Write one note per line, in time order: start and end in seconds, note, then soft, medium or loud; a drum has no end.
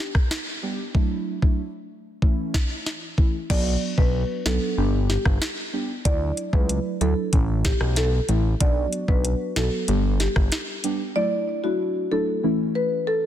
0.00 0.55 G3 loud
0.00 0.55 B3 medium
0.00 0.55 D4 medium
0.00 0.55 G4 loud
0.15 kick medium
0.15 cross-stick medium
0.31 snare loud
0.62 0.81 G3 medium
0.62 0.81 B3 medium
0.62 0.81 D4 medium
0.62 0.81 G4 medium
0.94 1.39 F#3 medium
0.94 1.39 A3 medium
0.94 1.39 D4 medium
0.94 1.39 E4 loud
0.94 kick loud
1.42 1.60 F#3 medium
1.42 1.61 A3 medium
1.42 1.61 D4 medium
1.42 1.61 E4 medium
1.42 kick medium
2.22 3.10 E3 medium
2.22 3.10 A3 medium
2.22 3.10 C#4 medium
2.22 3.11 E4 loud
2.22 kick medium
2.54 kick medium
2.54 snare loud
2.86 snare medium
3.18 3.36 E3 medium
3.18 3.36 A3 medium
3.18 3.36 C#4 medium
3.18 3.36 E4 medium
3.18 kick medium
3.50 3.76 B1 loud
3.50 3.94 F#3 loud
3.50 3.94 B3 medium
3.50 3.94 D4 medium
3.50 3.94 F#4 loud
3.50 3.77 D5 medium
3.50 kick loud
3.50 crash medium
3.97 4.24 B1 medium
3.97 4.42 F#3 medium
3.97 4.42 B3 medium
3.97 4.42 D4 medium
3.97 4.42 F#4 medium
3.97 4.25 B4 medium
3.97 kick medium
4.45 4.59 B1 medium
4.45 4.75 F#3 medium
4.45 4.75 B3 medium
4.45 4.75 D4 medium
4.45 4.75 F#4 medium
4.45 4.73 A4 medium
4.45 snare loud
4.77 5.17 G1 loud
4.77 5.66 G3 loud
4.77 5.66 B3 medium
4.77 5.66 D4 medium
4.77 5.66 G4 loud
5.10 5.23 G4 medium
5.10 snare medium
5.25 5.39 G1 loud
5.25 kick medium
5.25 cross-stick medium
5.42 snare loud
5.73 5.91 G3 medium
5.73 5.91 B3 medium
5.73 5.92 D4 medium
5.73 5.92 G4 medium
6.05 6.32 D2 loud
6.05 6.49 F#3 loud
6.05 6.49 A3 medium
6.05 6.49 D4 medium
6.05 6.49 E4 loud
6.05 6.33 D5 loud
6.05 kick loud
6.05 closed hi-hat medium
6.37 closed hi-hat soft
6.53 6.79 C#2 medium
6.53 6.97 F#3 medium
6.53 6.97 A3 medium
6.53 6.97 D4 medium
6.53 6.97 E4 medium
6.53 6.81 B4 medium
6.53 kick medium
6.69 closed hi-hat medium
7.01 7.14 D2 loud
7.01 7.30 F#3 medium
7.01 7.30 A3 medium
7.01 7.30 D4 medium
7.01 7.31 E4 medium
7.01 7.29 A4 medium
7.01 closed hi-hat soft
7.33 7.72 A1 medium
7.33 8.21 E3 loud
7.33 8.21 A3 medium
7.33 8.21 C#4 medium
7.33 8.21 E4 loud
7.33 kick medium
7.33 closed hi-hat medium
7.65 7.79 G4 medium
7.65 kick medium
7.65 snare loud
7.65 closed hi-hat medium
7.81 8.20 B1 medium
7.81 cross-stick medium
7.96 8.42 A4 medium
7.96 snare medium
7.96 closed hi-hat medium
8.28 8.55 A1 medium
8.28 8.47 E3 medium
8.28 8.47 A3 medium
8.28 8.47 C#4 medium
8.28 8.47 E4 medium
8.28 closed hi-hat medium
8.60 8.87 B1 loud
8.60 9.04 F#3 loud
8.60 9.05 B3 medium
8.60 9.05 D4 medium
8.60 9.05 F#4 loud
8.60 8.88 D5 loud
8.60 kick loud
8.60 closed hi-hat medium
8.93 closed hi-hat soft
9.08 9.35 B1 medium
9.08 9.52 F#3 medium
9.08 9.52 B3 medium
9.08 9.53 D4 medium
9.08 9.53 F#4 medium
9.08 9.36 B4 medium
9.08 kick loud
9.25 closed hi-hat medium
9.56 9.70 B1 loud
9.56 9.86 F#3 medium
9.56 9.86 B3 medium
9.56 9.86 D4 medium
9.56 9.86 F#4 medium
9.56 9.84 A4 medium
9.56 snare loud
9.56 closed hi-hat soft
9.88 10.28 G1 loud
9.88 10.76 G3 medium
9.88 10.76 B3 medium
9.88 10.76 D4 medium
9.88 10.76 G4 loud
9.88 closed hi-hat medium
10.20 10.34 G4 medium
10.20 snare medium
10.20 closed hi-hat medium
10.36 10.49 G1 loud
10.36 kick medium
10.36 cross-stick loud
10.52 snare loud
10.52 closed hi-hat medium
10.84 11.02 G3 medium
10.84 11.02 B3 medium
10.84 11.02 D4 medium
10.84 11.02 G4 medium
10.84 closed hi-hat medium
11.16 11.60 F#3 loud
11.16 11.60 A3 medium
11.16 11.60 D4 medium
11.16 11.60 E4 loud
11.16 11.43 D5 loud
11.64 12.08 F#3 medium
11.64 12.08 A3 medium
11.64 12.08 D4 medium
11.64 12.08 E4 medium
11.64 11.91 F#4 medium
12.11 12.41 F#3 medium
12.11 12.41 A3 medium
12.11 12.41 D4 medium
12.11 12.41 E4 medium
12.11 12.39 A4 medium
12.43 13.26 E3 loud
12.43 13.26 A3 medium
12.43 13.26 C#4 medium
12.43 13.26 E4 loud
12.75 12.89 B4 medium
13.07 13.26 A4 medium